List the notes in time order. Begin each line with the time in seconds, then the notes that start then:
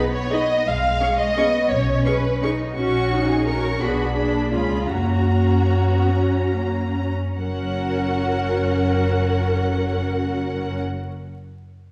Already playing: B3 B4
0.13 C#5
0.31 D#4 G#4 D#5 B5
0.66 B1 G#3 F5
1.01 C#4 G#4 C#6
1.18 D#5
1.37 B3 C#4 G#4 C#6
1.71 B1 C#4 C#5
2.05 C#4 G#4 B4 C#6
2.42 C#4 D#4 G#4 C#6
2.76 A#1 C#4 F#4 C#6
3.12 D#4
3.29 G#4
3.47 C#4 F#4 A#4 C#6
3.81 B1 B3 D4 F#4 G#4 B5
4.15 A#3 D4 G#4 B5
4.53 C#2 G#3 C#4 F4 G#4 B5
4.89 F#2 A#3 C#4 F#4 A#5
5.30 A#3
5.91 B3
6.11 C#4
6.51 A#3
6.97 C#4
7.39 F#1 F#2 C#4 F#4 A#4 F#5